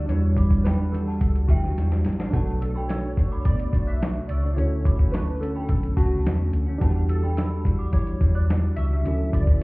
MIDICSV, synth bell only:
0, 0, Header, 1, 2, 480
1, 0, Start_track
1, 0, Tempo, 560905
1, 74, Time_signature, 4, 2, 24, 8
1, 8242, End_track
2, 0, Start_track
2, 0, Title_t, "Synth bell"
2, 0, Program_c, 0, 98
2, 318, Note_on_c, 0, 86, 64
2, 321, Note_on_c, 0, 83, 45
2, 430, Note_off_c, 0, 86, 0
2, 432, Note_off_c, 0, 83, 0
2, 557, Note_on_c, 0, 83, 77
2, 566, Note_on_c, 0, 79, 61
2, 670, Note_off_c, 0, 83, 0
2, 675, Note_off_c, 0, 79, 0
2, 921, Note_on_c, 0, 81, 62
2, 930, Note_on_c, 0, 78, 45
2, 1032, Note_off_c, 0, 81, 0
2, 1037, Note_off_c, 0, 78, 0
2, 1279, Note_on_c, 0, 79, 80
2, 1283, Note_on_c, 0, 76, 61
2, 1616, Note_off_c, 0, 79, 0
2, 1617, Note_off_c, 0, 76, 0
2, 1999, Note_on_c, 0, 81, 91
2, 2003, Note_on_c, 0, 78, 67
2, 2111, Note_off_c, 0, 81, 0
2, 2113, Note_off_c, 0, 78, 0
2, 2359, Note_on_c, 0, 83, 73
2, 2368, Note_on_c, 0, 79, 52
2, 2471, Note_off_c, 0, 83, 0
2, 2476, Note_off_c, 0, 79, 0
2, 2483, Note_on_c, 0, 88, 70
2, 2490, Note_on_c, 0, 85, 55
2, 2593, Note_off_c, 0, 88, 0
2, 2597, Note_off_c, 0, 85, 0
2, 2837, Note_on_c, 0, 86, 64
2, 2846, Note_on_c, 0, 83, 51
2, 2945, Note_off_c, 0, 86, 0
2, 2952, Note_off_c, 0, 83, 0
2, 2955, Note_on_c, 0, 86, 73
2, 2962, Note_on_c, 0, 83, 56
2, 3069, Note_off_c, 0, 86, 0
2, 3073, Note_off_c, 0, 83, 0
2, 3313, Note_on_c, 0, 90, 59
2, 3317, Note_on_c, 0, 86, 48
2, 3428, Note_off_c, 0, 90, 0
2, 3430, Note_off_c, 0, 86, 0
2, 3684, Note_on_c, 0, 88, 63
2, 3690, Note_on_c, 0, 85, 44
2, 3793, Note_off_c, 0, 88, 0
2, 3797, Note_off_c, 0, 85, 0
2, 4152, Note_on_c, 0, 86, 58
2, 4161, Note_on_c, 0, 83, 49
2, 4267, Note_off_c, 0, 86, 0
2, 4272, Note_off_c, 0, 83, 0
2, 4394, Note_on_c, 0, 85, 82
2, 4399, Note_on_c, 0, 81, 60
2, 4508, Note_off_c, 0, 85, 0
2, 4511, Note_off_c, 0, 81, 0
2, 4754, Note_on_c, 0, 83, 62
2, 4762, Note_on_c, 0, 79, 53
2, 4868, Note_off_c, 0, 83, 0
2, 4873, Note_off_c, 0, 79, 0
2, 5106, Note_on_c, 0, 81, 90
2, 5108, Note_on_c, 0, 78, 65
2, 5448, Note_off_c, 0, 81, 0
2, 5450, Note_off_c, 0, 78, 0
2, 5832, Note_on_c, 0, 81, 87
2, 5839, Note_on_c, 0, 78, 68
2, 5947, Note_off_c, 0, 81, 0
2, 5951, Note_off_c, 0, 78, 0
2, 6192, Note_on_c, 0, 83, 69
2, 6199, Note_on_c, 0, 79, 53
2, 6307, Note_off_c, 0, 83, 0
2, 6309, Note_on_c, 0, 88, 70
2, 6311, Note_off_c, 0, 79, 0
2, 6316, Note_on_c, 0, 83, 56
2, 6426, Note_off_c, 0, 88, 0
2, 6429, Note_off_c, 0, 83, 0
2, 6665, Note_on_c, 0, 86, 68
2, 6675, Note_on_c, 0, 83, 54
2, 6778, Note_off_c, 0, 86, 0
2, 6787, Note_off_c, 0, 83, 0
2, 6789, Note_on_c, 0, 86, 67
2, 6797, Note_on_c, 0, 83, 59
2, 6905, Note_off_c, 0, 86, 0
2, 6910, Note_off_c, 0, 83, 0
2, 7145, Note_on_c, 0, 90, 58
2, 7148, Note_on_c, 0, 86, 53
2, 7264, Note_off_c, 0, 90, 0
2, 7265, Note_off_c, 0, 86, 0
2, 7507, Note_on_c, 0, 88, 58
2, 7515, Note_on_c, 0, 85, 52
2, 7625, Note_off_c, 0, 88, 0
2, 7629, Note_off_c, 0, 85, 0
2, 7991, Note_on_c, 0, 86, 57
2, 7995, Note_on_c, 0, 83, 45
2, 8107, Note_off_c, 0, 86, 0
2, 8109, Note_off_c, 0, 83, 0
2, 8242, End_track
0, 0, End_of_file